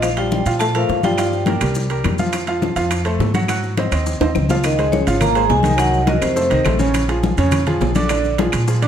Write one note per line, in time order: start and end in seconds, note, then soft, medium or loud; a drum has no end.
0.00 0.40 A#1 medium
0.00 0.12 F3 medium
0.00 0.09 F3 medium
0.00 0.12 F4 medium
0.00 0.12 F5 medium
0.00 0.09 F5 medium
0.00 high bongo medium
0.00 high conga soft
0.00 high timbale medium
0.00 claves medium
0.00 maracas medium
0.17 0.41 F3 medium
0.17 0.44 G3 medium
0.17 0.41 F4 medium
0.17 0.41 F5 medium
0.17 0.44 G5 medium
0.17 high conga soft
0.17 high timbale medium
0.17 maracas soft
0.31 high bongo medium
0.31 high conga medium
0.31 maracas soft
0.46 0.86 A#2 medium
0.46 0.70 F3 medium
0.46 0.70 F4 medium
0.46 0.70 F5 medium
0.46 high timbale medium
0.46 maracas medium
0.59 0.67 A3 medium
0.59 0.66 A5 loud
0.59 high bongo medium
0.59 high conga soft
0.59 high timbale medium
0.59 claves medium
0.59 maracas medium
0.75 1.02 F3 medium
0.75 0.98 A3 medium
0.75 0.99 A4 medium
0.75 0.99 A#4 medium
0.75 1.04 F5 medium
0.75 high conga soft
0.75 high timbale medium
0.75 maracas soft
0.89 1.55 G2 medium
0.89 high bongo medium
0.89 low bongo medium
0.89 high conga soft
0.89 maracas soft
1.03 1.15 F3 medium
1.03 1.57 G3 medium
1.03 1.16 F4 medium
1.03 1.16 F5 medium
1.03 1.58 G5 medium
1.03 high conga medium
1.03 high timbale medium
1.03 maracas medium
1.18 1.42 F3 medium
1.18 1.42 F4 medium
1.18 1.42 F5 medium
1.18 high bongo medium
1.18 high conga soft
1.18 high timbale medium
1.18 claves medium
1.18 maracas medium
1.32 high bongo soft
1.32 high conga soft
1.32 maracas soft
1.46 1.59 A#3 medium
1.46 1.59 A#4 medium
1.46 1.59 D5 medium
1.46 high bongo medium
1.46 high conga medium
1.46 high timbale medium
1.46 maracas soft
1.61 2.01 C2 medium
1.61 1.85 G3 medium
1.61 1.85 G4 medium
1.61 1.85 A#4 medium
1.61 high bongo soft
1.61 high conga soft
1.61 high timbale medium
1.61 claves medium
1.61 maracas medium
1.75 high bongo medium
1.75 high conga soft
1.75 maracas medium
1.90 2.14 G3 medium
1.90 2.14 G4 medium
1.90 2.14 A#4 medium
1.90 high conga soft
1.90 high timbale medium
1.90 maracas soft
2.04 2.71 F2 medium
2.04 high bongo medium
2.04 low bongo medium
2.04 high conga medium
2.04 high timbale medium
2.04 claves medium
2.04 maracas soft
2.18 2.42 F3 medium
2.18 2.43 F4 medium
2.18 2.43 F5 medium
2.18 high bongo soft
2.18 high conga medium
2.18 maracas medium
2.33 high bongo medium
2.33 high conga soft
2.33 high timbale medium
2.33 claves medium
2.33 maracas medium
2.47 2.71 F3 medium
2.47 2.71 F4 medium
2.47 2.72 F5 medium
2.47 high conga soft
2.47 high timbale medium
2.47 maracas soft
2.62 high bongo medium
2.62 high conga medium
2.62 maracas soft
2.76 3.16 F2 medium
2.76 3.00 F3 medium
2.76 3.00 F4 medium
2.76 3.00 F5 medium
2.76 high timbale medium
2.76 maracas medium
2.91 high bongo medium
2.91 high conga soft
2.91 high timbale medium
2.91 claves medium
2.91 maracas medium
3.05 3.29 A3 medium
3.05 3.29 A4 medium
3.05 3.29 C5 medium
3.05 high conga soft
3.05 high timbale medium
3.05 maracas soft
3.19 3.86 G#2 medium
3.19 high bongo medium
3.19 low bongo medium
3.19 high conga soft
3.19 low timbale medium
3.19 maracas soft
3.34 3.46 F#3 medium
3.34 3.46 F#4 medium
3.34 3.46 F#5 medium
3.34 high conga medium
3.34 high timbale medium
3.34 maracas medium
3.48 3.72 F#3 medium
3.48 3.72 F#4 medium
3.48 3.72 F#5 medium
3.48 high bongo medium
3.48 high conga soft
3.48 high timbale medium
3.48 claves medium
3.48 maracas medium
3.63 high bongo soft
3.63 high conga soft
3.63 maracas soft
3.77 3.90 C4 medium
3.77 3.90 C5 medium
3.77 3.90 D#5 medium
3.77 high bongo medium
3.77 high conga medium
3.77 high timbale medium
3.77 maracas soft
3.92 4.18 D#2 medium
3.92 4.16 C4 medium
3.92 4.16 C5 medium
3.92 4.16 D#5 medium
3.92 high bongo soft
3.92 high conga soft
3.92 high timbale medium
3.92 claves medium
3.92 maracas medium
4.06 high bongo medium
4.06 high conga soft
4.06 maracas medium
4.20 4.34 D#2 medium
4.20 4.45 C4 medium
4.20 4.45 C5 medium
4.20 4.45 D#5 medium
4.20 high bongo medium
4.20 high conga soft
4.20 high timbale medium
4.20 maracas soft
4.35 5.02 C#2 medium
4.35 high bongo medium
4.35 high conga medium
4.35 claves medium
4.35 maracas soft
4.49 4.56 F3 medium
4.49 4.61 F3 medium
4.49 4.62 F4 medium
4.49 4.56 F5 medium
4.49 4.62 F5 medium
4.49 low bongo medium
4.49 high conga medium
4.49 low timbale medium
4.49 maracas medium
4.64 4.91 D#3 medium
4.64 4.91 D#5 medium
4.64 high bongo medium
4.64 high conga soft
4.64 high timbale medium
4.64 claves medium
4.64 maracas medium
4.78 5.02 G#3 medium
4.78 5.02 G#4 medium
4.78 5.02 C5 medium
4.78 high conga soft
4.78 high timbale medium
4.78 maracas soft
4.91 5.19 C#3 medium
4.91 5.22 C#5 medium
4.91 high bongo medium
4.91 high conga medium
4.91 maracas soft
5.07 5.47 G#1 medium
5.07 5.31 F3 medium
5.07 5.31 F4 medium
5.07 5.31 F5 medium
5.07 high timbale medium
5.07 maracas medium
5.20 5.47 A#3 medium
5.20 5.51 A#5 loud
5.20 high bongo medium
5.20 high conga soft
5.20 low conga medium
5.20 high timbale medium
5.20 claves medium
5.20 maracas medium
5.35 5.59 G#3 medium
5.35 5.59 G#4 medium
5.35 5.60 C5 medium
5.35 high conga soft
5.35 high timbale medium
5.35 maracas soft
5.48 6.17 C2 medium
5.48 5.75 G#3 medium
5.48 5.80 G#5 loud
5.48 high bongo medium
5.48 low bongo medium
5.48 high conga soft
5.48 low timbale medium
5.48 maracas soft
5.63 5.76 D#3 medium
5.63 5.76 D#4 medium
5.63 5.76 D#5 medium
5.63 high conga medium
5.63 high timbale medium
5.63 maracas medium
5.76 6.02 D#3 medium
5.76 6.04 F#3 medium
5.76 6.02 D#4 medium
5.76 6.02 D#5 medium
5.76 6.06 F#5 loud
5.76 high bongo medium
5.76 high conga soft
5.76 high timbale medium
5.76 claves medium
5.76 maracas medium
5.93 high bongo soft
5.93 high conga soft
5.93 maracas soft
6.06 6.20 D#3 medium
6.06 6.31 F#3 medium
6.06 6.31 F#4 medium
6.06 6.31 A#4 medium
6.06 6.23 D#5 medium
6.06 high bongo medium
6.06 high conga medium
6.06 high timbale medium
6.06 maracas soft
6.20 6.49 F2 medium
6.20 6.75 C3 medium
6.20 6.75 C5 medium
6.20 high bongo soft
6.20 high conga soft
6.20 high timbale medium
6.20 claves medium
6.20 maracas medium
6.36 6.48 A3 medium
6.36 6.48 A4 medium
6.36 6.48 C5 medium
6.36 high bongo medium
6.36 high conga soft
6.36 maracas medium
6.50 6.65 C2 medium
6.50 6.62 D#3 medium
6.50 6.62 D#4 medium
6.50 6.63 D#5 medium
6.50 high conga soft
6.50 high timbale medium
6.50 maracas soft
6.65 7.32 A#1 medium
6.65 6.77 A3 medium
6.65 6.77 A4 medium
6.65 6.77 C5 medium
6.65 high bongo medium
6.65 low bongo medium
6.65 high conga medium
6.65 high timbale medium
6.65 claves medium
6.65 maracas soft
6.79 7.03 C#3 medium
6.79 7.03 C#4 medium
6.79 7.03 C#5 medium
6.79 high bongo soft
6.79 high conga medium
6.79 maracas medium
6.94 high bongo medium
6.94 high conga soft
6.94 high timbale medium
6.94 claves medium
6.94 maracas medium
7.08 7.32 F3 medium
7.08 7.32 F4 medium
7.08 7.33 G#4 medium
7.08 high conga soft
7.08 high timbale medium
7.08 maracas soft
7.23 high bongo medium
7.23 high conga medium
7.23 maracas soft
7.38 7.78 F2 medium
7.38 7.61 C#3 medium
7.38 7.62 C#4 medium
7.38 7.62 C#5 medium
7.38 high timbale medium
7.38 maracas medium
7.51 high bongo medium
7.51 high conga soft
7.51 low conga medium
7.51 high timbale medium
7.51 claves medium
7.51 maracas medium
7.66 7.90 F3 medium
7.66 7.90 F4 medium
7.66 7.91 G#4 medium
7.66 high conga soft
7.66 low conga medium
7.66 high timbale medium
7.66 maracas soft
7.80 8.47 A#1 medium
7.80 high bongo medium
7.80 low bongo medium
7.80 high conga soft
7.80 low timbale medium
7.80 maracas soft
7.95 8.07 D3 medium
7.95 8.07 D4 medium
7.95 8.07 D5 medium
7.95 high conga medium
7.95 high timbale medium
7.95 maracas medium
8.09 8.33 D3 medium
8.09 8.34 D4 medium
8.09 8.34 D5 medium
8.09 high bongo medium
8.09 high timbale medium
8.09 claves medium
8.09 maracas medium
8.24 high bongo soft
8.24 high conga soft
8.24 maracas soft
8.38 8.63 F3 medium
8.38 8.63 F4 medium
8.38 8.63 G#4 medium
8.38 high bongo medium
8.38 high conga loud
8.38 high timbale medium
8.38 maracas soft
8.52 8.88 A#2 medium
8.52 high bongo soft
8.52 high conga soft
8.52 high timbale medium
8.52 claves medium
8.52 maracas medium
8.67 8.79 F3 medium
8.67 8.79 F4 medium
8.67 8.80 G#4 medium
8.67 high bongo medium
8.67 high conga soft
8.67 maracas medium
8.82 8.88 D3 medium
8.82 8.88 D4 medium
8.82 8.88 D5 medium
8.82 high conga soft
8.82 high timbale medium
8.82 maracas soft